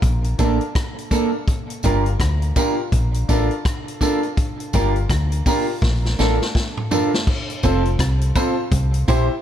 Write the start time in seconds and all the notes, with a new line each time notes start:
0.02 A#1, kick, closed hi-hat
0.24 closed hi-hat
0.38 A1 A#3 D4 A4 A#4, kick, closed hi-hat, tambourine
0.61 closed hi-hat
0.75 kick, cross-stick, closed hi-hat
0.98 closed hi-hat
1.11 A#3 D4 A4 A#4, kick, closed hi-hat, tambourine
1.34 A4 A#4
1.48 kick, closed hi-hat
1.70 closed hi-hat
1.83 G1 D4 F4 G4 A#4, kick, closed hi-hat, tambourine
2.06 closed hi-hat
2.20 D2, kick, cross-stick, closed hi-hat
2.42 closed hi-hat
2.56 D4 F4 G4 A#4, kick, closed hi-hat, tambourine
2.92 A#1, kick, closed hi-hat
3.14 closed hi-hat
3.28 A1 D4 F4 A4 A#4, kick, closed hi-hat, tambourine
3.51 closed hi-hat
3.65 kick, cross-stick, closed hi-hat
3.88 closed hi-hat
4.01 D4 F4 A4 A#4, kick, closed hi-hat, tambourine
4.23 A4 A#4, muted clean electric guitar stroke, closed hi-hat
4.37 kick, closed hi-hat
4.60 closed hi-hat
4.73 G1 D4 F4 G4 A#4, kick, closed hi-hat, tambourine
4.96 closed hi-hat
5.10 D2, kick, cross-stick, closed hi-hat
5.32 closed hi-hat
5.46 D4 F4 G4 A#4, kick, open hi-hat, tambourine
5.82 A#1, kick, snare
6.05 snare
6.19 A1 D4 F4 A4 A#4, snare, tambourine
6.42 snare
6.55 kick, snare
6.77 mid tom
6.91 D4 F4 A4 A#4, floor tom, tambourine
7.14 A4 A#4, snare
7.27 kick, crash
7.50 closed hi-hat
7.63 F1 C4 F4 A4 C5, kick, closed hi-hat, tambourine
7.85 closed hi-hat
7.99 C2, kick, cross-stick, closed hi-hat
8.21 closed hi-hat
8.35 C4 F4 A4 C5, kick, closed hi-hat, tambourine, high woodblock
8.72 C2, kick, closed hi-hat
8.94 closed hi-hat
9.08 A#1 E4 G4 C5, kick, closed hi-hat, tambourine